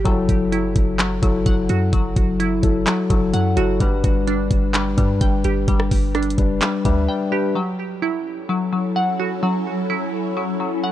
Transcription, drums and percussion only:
0.05 kick, closed hi-hat
0.29 kick, closed hi-hat
0.52 closed hi-hat
0.76 kick, closed hi-hat
0.99 clap, closed hi-hat
1.23 kick, closed hi-hat
1.46 kick, closed hi-hat
1.69 closed hi-hat
1.93 kick, closed hi-hat
2.16 kick, closed hi-hat
2.40 closed hi-hat
2.63 kick, closed hi-hat
2.87 clap, closed hi-hat
3.10 kick, closed hi-hat
3.34 closed hi-hat
3.57 closed hi-hat
3.80 kick, closed hi-hat
4.04 kick, closed hi-hat
4.28 closed hi-hat
4.51 kick, closed hi-hat
4.74 clap, closed hi-hat
4.98 kick, closed hi-hat
5.21 kick, closed hi-hat
5.44 closed hi-hat
5.68 kick, closed hi-hat
5.80 cross-stick
5.91 kick, open hi-hat
6.15 cross-stick, closed hi-hat
6.23 closed hi-hat
6.30 closed hi-hat
6.38 kick, closed hi-hat
6.62 clap, closed hi-hat
6.85 kick, closed hi-hat

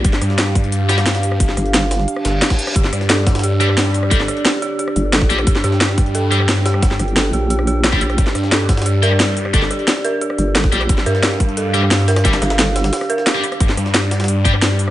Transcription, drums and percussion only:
0.05 kick, closed hi-hat
0.13 snare
0.21 cross-stick, closed hi-hat
0.30 snare
0.38 snare, closed hi-hat
0.47 snare
0.55 kick, closed hi-hat
0.64 closed hi-hat
0.72 closed hi-hat
0.89 snare, closed hi-hat
0.98 cross-stick, snare, closed hi-hat
1.06 snare, closed hi-hat
1.15 snare, closed hi-hat
1.23 closed hi-hat
1.32 cross-stick
1.40 kick, closed hi-hat
1.49 snare
1.57 cross-stick, closed hi-hat
1.66 closed hi-hat
1.74 snare, closed hi-hat
1.83 snare
1.91 snare, closed hi-hat
1.99 snare
2.08 closed hi-hat
2.16 cross-stick
2.25 snare, closed hi-hat
2.42 snare, closed hi-hat
2.50 kick, snare, closed hi-hat
2.59 closed hi-hat
2.67 cross-stick, closed hi-hat
2.76 kick, closed hi-hat
2.84 snare
2.93 cross-stick, closed hi-hat
3.01 snare
3.10 snare, closed hi-hat
3.18 snare
3.27 kick, snare, closed hi-hat
3.35 snare, closed hi-hat
3.39 snare, closed hi-hat
3.44 closed hi-hat
3.60 closed hi-hat
3.69 cross-stick
3.77 snare, closed hi-hat, open hi-hat
3.86 snare
3.94 closed hi-hat
4.03 cross-stick
4.11 kick, closed hi-hat
4.20 snare
4.28 cross-stick, closed hi-hat
4.37 closed hi-hat
4.45 snare, closed hi-hat
4.54 snare
4.62 closed hi-hat
4.79 closed hi-hat
4.88 cross-stick
4.96 closed hi-hat
5.13 snare, closed hi-hat
5.21 kick, snare
5.30 closed hi-hat
5.38 cross-stick, closed hi-hat
5.47 kick, closed hi-hat
5.55 snare
5.64 cross-stick, closed hi-hat
5.72 snare
5.81 snare, closed hi-hat
5.89 snare
5.98 kick, closed hi-hat
6.06 closed hi-hat
6.15 closed hi-hat
6.32 closed hi-hat
6.40 cross-stick
6.49 snare, closed hi-hat, open hi-hat
6.57 snare
6.66 snare, closed hi-hat
6.74 cross-stick
6.82 kick, snare, closed hi-hat
6.91 snare
6.99 cross-stick, closed hi-hat
7.08 closed hi-hat
7.16 snare, closed hi-hat
7.25 snare
7.33 closed hi-hat
7.50 closed hi-hat
7.59 cross-stick
7.67 closed hi-hat
7.84 snare, closed hi-hat
7.93 kick, snare
8.01 closed hi-hat
8.10 cross-stick, closed hi-hat
8.18 kick, closed hi-hat
8.27 snare
8.35 cross-stick, closed hi-hat
8.44 snare
8.52 snare, closed hi-hat
8.60 snare
8.69 kick, snare, closed hi-hat
8.77 snare, closed hi-hat
8.82 snare, closed hi-hat
8.86 closed hi-hat
9.03 closed hi-hat
9.11 cross-stick
9.20 snare, closed hi-hat, open hi-hat
9.28 snare
9.37 closed hi-hat
9.45 cross-stick
9.54 kick, closed hi-hat
9.62 snare
9.71 cross-stick, closed hi-hat
9.79 closed hi-hat
9.88 snare, closed hi-hat
9.96 snare
10.05 closed hi-hat
10.21 closed hi-hat
10.30 cross-stick
10.38 closed hi-hat
10.55 snare, closed hi-hat
10.64 kick, snare
10.72 closed hi-hat
10.81 cross-stick, closed hi-hat
10.89 kick, closed hi-hat
10.98 snare
11.06 cross-stick, closed hi-hat
11.15 snare
11.23 snare, closed hi-hat
11.32 snare
11.40 kick, closed hi-hat
11.49 closed hi-hat
11.57 closed hi-hat
11.74 closed hi-hat
11.82 cross-stick
11.91 snare, closed hi-hat, open hi-hat
11.99 snare
12.08 snare, closed hi-hat
12.16 cross-stick, snare, closed hi-hat
12.25 kick, snare, closed hi-hat
12.33 snare, closed hi-hat
12.42 cross-stick, snare, closed hi-hat
12.50 snare, closed hi-hat
12.59 snare, closed hi-hat
12.67 snare
12.76 snare, closed hi-hat
12.84 snare, closed hi-hat
12.93 snare, closed hi-hat, open hi-hat
13.01 cross-stick, snare
13.10 closed hi-hat
13.18 snare
13.27 snare, closed hi-hat
13.35 snare
13.44 closed hi-hat
13.52 cross-stick, closed hi-hat
13.60 kick, closed hi-hat
13.69 snare
13.77 cross-stick, closed hi-hat
13.86 snare
13.94 snare, closed hi-hat
14.03 snare
14.11 snare, closed hi-hat
14.20 snare, closed hi-hat
14.24 snare, closed hi-hat
14.28 closed hi-hat
14.45 kick, closed hi-hat
14.54 cross-stick
14.62 snare, closed hi-hat, open hi-hat
14.71 snare
14.79 closed hi-hat

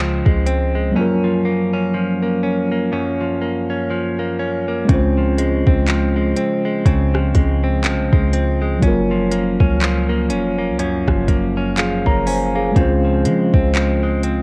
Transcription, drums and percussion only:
0.26 kick
0.47 closed hi-hat
4.89 kick, closed hi-hat
5.38 closed hi-hat
5.67 kick
5.88 clap, closed hi-hat
6.37 closed hi-hat
6.86 kick, closed hi-hat
7.15 cross-stick
7.35 kick, closed hi-hat
7.84 clap, closed hi-hat
8.13 kick
8.33 closed hi-hat
8.82 kick, closed hi-hat
9.32 closed hi-hat
9.60 kick
9.81 clap, closed hi-hat
10.30 closed hi-hat
10.79 closed hi-hat
11.08 kick, cross-stick
11.28 kick, closed hi-hat
11.77 clap, closed hi-hat
12.06 kick
12.27 open hi-hat
12.76 kick, closed hi-hat
13.25 closed hi-hat
13.54 kick
13.75 clap, closed hi-hat
14.23 closed hi-hat

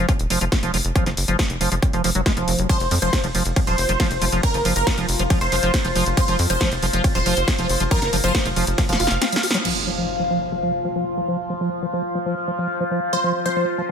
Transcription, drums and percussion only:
0.09 kick, closed hi-hat
0.19 closed hi-hat
0.30 open hi-hat
0.41 closed hi-hat
0.52 kick, snare, closed hi-hat
0.63 closed hi-hat
0.74 open hi-hat
0.85 closed hi-hat
0.96 kick, closed hi-hat
1.06 snare, closed hi-hat
1.17 open hi-hat
1.28 closed hi-hat
1.39 kick, snare, closed hi-hat
1.50 closed hi-hat
1.61 open hi-hat
1.72 closed hi-hat
1.82 kick, closed hi-hat
1.93 closed hi-hat
2.04 open hi-hat
2.15 closed hi-hat
2.26 kick, snare, closed hi-hat
2.37 closed hi-hat
2.48 open hi-hat
2.59 closed hi-hat
2.69 kick, closed hi-hat, ride
2.80 closed hi-hat
2.91 open hi-hat
3.02 closed hi-hat
3.13 kick, snare, closed hi-hat, ride
3.24 closed hi-hat
3.35 open hi-hat
3.46 closed hi-hat
3.56 kick, closed hi-hat, ride
3.67 closed hi-hat
3.78 open hi-hat
3.89 closed hi-hat
4.00 kick, snare, closed hi-hat, ride
4.11 closed hi-hat
4.22 open hi-hat
4.32 closed hi-hat
4.43 kick, closed hi-hat, ride
4.54 closed hi-hat
4.65 open hi-hat
4.76 closed hi-hat
4.87 kick, snare, closed hi-hat, ride
4.98 closed hi-hat
5.09 open hi-hat
5.19 closed hi-hat
5.30 kick, closed hi-hat, ride
5.41 closed hi-hat
5.52 open hi-hat
5.63 closed hi-hat
5.74 kick, snare, closed hi-hat, ride
5.85 closed hi-hat
5.96 open hi-hat
6.06 closed hi-hat
6.17 kick, closed hi-hat, ride
6.28 closed hi-hat
6.39 open hi-hat
6.50 closed hi-hat
6.61 kick, snare, closed hi-hat, ride
6.72 closed hi-hat
6.83 open hi-hat
6.93 closed hi-hat
7.04 kick, closed hi-hat, ride
7.15 closed hi-hat
7.26 open hi-hat
7.37 closed hi-hat
7.48 kick, snare, closed hi-hat, ride
7.59 closed hi-hat
7.69 open hi-hat
7.80 closed hi-hat
7.91 kick, closed hi-hat, ride
8.02 snare, closed hi-hat
8.13 open hi-hat
8.24 closed hi-hat
8.35 kick, snare, closed hi-hat, ride
8.46 closed hi-hat
8.56 open hi-hat
8.67 closed hi-hat
8.78 kick, snare, closed hi-hat, ride
8.89 snare, closed hi-hat
9.00 open hi-hat
9.07 snare, closed hi-hat
9.22 snare, closed hi-hat, ride
9.32 snare, closed hi-hat
9.43 open hi-hat
9.51 snare, closed hi-hat
9.65 crash

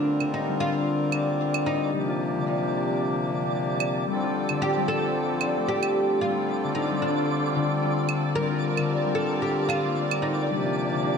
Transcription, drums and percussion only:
0.20 claves
1.12 claves
1.54 claves
3.80 claves
4.49 claves
5.41 claves
5.83 claves
8.09 claves
8.77 claves
9.70 claves
10.11 claves

